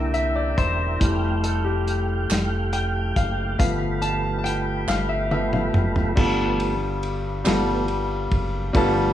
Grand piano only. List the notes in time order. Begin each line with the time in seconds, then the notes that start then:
Already playing: D3 E3 A#3 G5
0.14 E5
0.36 D5
0.58 C5
1.00 E3 G3 A3
1.43 A4
1.64 G4
2.73 G5
3.17 F5
3.59 F3 A3 B3 F5
4.02 A5
4.38 A5
4.44 G5
4.88 F5
5.09 E5
5.32 F3 A3 B3 E5
5.53 F5
6.16 G2 G3 B3 F4 A4
7.44 G3 B3 F4 A4
8.73 G2 G3 B3 F4 A4